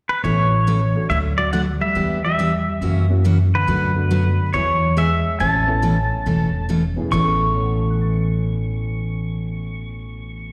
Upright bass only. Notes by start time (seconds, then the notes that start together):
0.24 A1
1.10 D2
1.96 E2
2.81 F#2
3.68 F#2
4.54 E2
5.40 A1
6.26 E1
7.12 A1